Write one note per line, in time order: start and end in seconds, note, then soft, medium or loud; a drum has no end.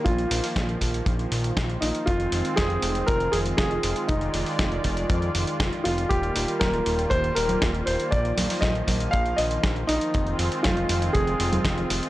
0.00 8.08 D#3 medium
0.00 2.03 A#3 medium
0.00 10.10 F4 medium
0.04 0.26 A#1 loud
0.04 2.05 F3 medium
0.04 1.02 F4 medium
0.04 kick loud
0.04 closed hi-hat medium
0.18 closed hi-hat soft
0.31 0.41 A#1 medium
0.31 open hi-hat loud
0.44 open hi-hat medium
0.56 0.76 A#1 medium
0.56 kick loud
0.56 snare loud
0.56 closed hi-hat medium
0.69 closed hi-hat soft
0.81 1.02 A#1 medium
0.81 kick medium
0.81 open hi-hat loud
0.94 closed hi-hat medium
1.06 1.27 A#1 medium
1.06 kick loud
1.06 closed hi-hat medium
1.19 closed hi-hat soft
1.32 1.52 A#1 loud
1.32 open hi-hat loud
1.44 closed hi-hat medium
1.57 1.77 A#1 medium
1.57 kick loud
1.57 snare loud
1.57 closed hi-hat medium
1.69 closed hi-hat soft
1.81 1.92 A#1 medium
1.81 2.07 D#4 medium
1.81 open hi-hat loud
1.95 closed hi-hat medium
2.06 2.28 F1 loud
2.06 6.07 G#3 medium
2.06 4.07 C4 medium
2.06 2.58 F4 medium
2.06 kick loud
2.06 closed hi-hat medium
2.20 closed hi-hat soft
2.32 2.43 F1 medium
2.32 open hi-hat loud
2.45 closed hi-hat medium
2.56 2.78 F1 medium
2.56 3.09 G#4 loud
2.56 kick loud
2.56 snare loud
2.56 closed hi-hat soft
2.70 closed hi-hat soft
2.83 3.03 F1 medium
2.83 open hi-hat medium
2.95 closed hi-hat medium
3.07 3.29 F1 medium
3.07 3.33 A#4 loud
3.07 kick loud
3.07 closed hi-hat medium
3.20 closed hi-hat soft
3.32 3.54 F1 loud
3.32 3.38 G#4 loud
3.32 open hi-hat loud
3.46 closed hi-hat medium
3.57 3.79 F1 medium
3.57 4.10 G#4 loud
3.57 kick loud
3.57 snare loud
3.57 closed hi-hat soft
3.71 closed hi-hat soft
3.83 3.94 F1 medium
3.83 open hi-hat loud
3.96 closed hi-hat medium
4.08 4.30 F1 loud
4.08 5.05 D#4 medium
4.08 6.09 D5 medium
4.08 kick loud
4.08 closed hi-hat medium
4.21 closed hi-hat soft
4.34 4.44 F1 medium
4.34 open hi-hat loud
4.46 open hi-hat medium
4.59 4.80 F1 medium
4.59 kick loud
4.59 snare loud
4.59 closed hi-hat soft
4.72 closed hi-hat soft
4.84 5.05 F1 medium
4.84 kick medium
4.84 open hi-hat medium
4.97 closed hi-hat soft
5.10 5.30 F2 medium
5.10 kick loud
5.10 closed hi-hat soft
5.22 closed hi-hat soft
5.35 5.45 F1 medium
5.35 open hi-hat medium
5.47 closed hi-hat medium
5.60 5.70 F1 medium
5.60 kick loud
5.60 snare loud
5.60 closed hi-hat medium
5.73 closed hi-hat soft
5.84 6.06 F1 medium
5.84 6.11 F4 medium
5.84 open hi-hat medium
5.98 closed hi-hat soft
6.09 6.31 D#1 loud
6.09 8.10 G3 medium
6.09 10.10 A#3 medium
6.09 6.57 G4 medium
6.09 kick loud
6.09 closed hi-hat soft
6.23 closed hi-hat soft
6.36 6.46 D#1 medium
6.36 open hi-hat loud
6.48 closed hi-hat soft
6.60 6.82 D#1 medium
6.60 7.12 A#4 medium
6.60 kick loud
6.60 snare loud
6.60 closed hi-hat soft
6.60 high conga medium
6.74 closed hi-hat soft
6.86 7.07 D#1 medium
6.86 open hi-hat medium
6.99 closed hi-hat medium
7.10 7.32 D#1 medium
7.10 7.37 C5 loud
7.10 kick loud
7.10 closed hi-hat soft
7.24 closed hi-hat soft
7.35 7.57 D#1 medium
7.35 7.59 A#4 medium
7.35 open hi-hat loud
7.49 closed hi-hat soft
7.49 high conga medium
7.62 7.83 D#1 medium
7.62 kick loud
7.62 snare loud
7.62 closed hi-hat soft
7.74 closed hi-hat soft
7.86 7.97 D#1 medium
7.86 8.12 C5 medium
7.86 open hi-hat medium
8.00 closed hi-hat soft
8.11 8.33 A#1 loud
8.11 12.09 D#3 medium
8.11 10.12 F3 medium
8.11 8.63 D5 medium
8.11 kick loud
8.11 closed hi-hat soft
8.25 closed hi-hat soft
8.37 8.48 A#1 medium
8.37 open hi-hat loud
8.37 high conga medium
8.50 open hi-hat medium
8.61 8.83 A#1 medium
8.61 9.14 D#5 medium
8.61 kick loud
8.61 snare loud
8.61 closed hi-hat soft
8.61 high conga medium
8.75 closed hi-hat soft
8.88 9.08 A#1 medium
8.88 kick medium
8.88 open hi-hat loud
8.88 high conga medium
9.00 closed hi-hat soft
9.11 9.34 A#1 medium
9.11 9.38 F5 loud
9.11 kick loud
9.11 closed hi-hat medium
9.26 closed hi-hat soft
9.37 9.59 A#1 loud
9.37 9.61 D#5 medium
9.37 open hi-hat loud
9.51 closed hi-hat soft
9.64 9.84 A#1 medium
9.64 kick loud
9.64 snare loud
9.64 closed hi-hat soft
9.76 closed hi-hat soft
9.87 9.99 A#1 medium
9.87 10.35 D#4 loud
9.87 open hi-hat loud
10.01 closed hi-hat soft
10.14 10.35 F1 loud
10.14 12.09 G#3 medium
10.14 12.09 C4 medium
10.14 12.09 F4 medium
10.14 kick loud
10.14 closed hi-hat soft
10.27 closed hi-hat soft
10.39 10.49 F1 medium
10.39 open hi-hat loud
10.52 closed hi-hat medium
10.63 10.85 F1 medium
10.63 11.16 F4 medium
10.63 kick loud
10.63 snare loud
10.63 closed hi-hat soft
10.63 high conga medium
10.77 closed hi-hat soft
10.89 11.10 F1 medium
10.89 open hi-hat loud
11.02 closed hi-hat medium
11.13 11.35 F1 medium
11.13 12.09 G#4 medium
11.13 kick loud
11.13 closed hi-hat soft
11.27 closed hi-hat soft
11.40 11.60 F1 medium
11.40 open hi-hat loud
11.53 closed hi-hat medium
11.53 high conga medium
11.65 11.85 F1 medium
11.65 kick loud
11.65 snare loud
11.65 closed hi-hat medium
11.78 closed hi-hat soft
11.90 12.01 F1 medium
11.90 open hi-hat loud
12.03 closed hi-hat medium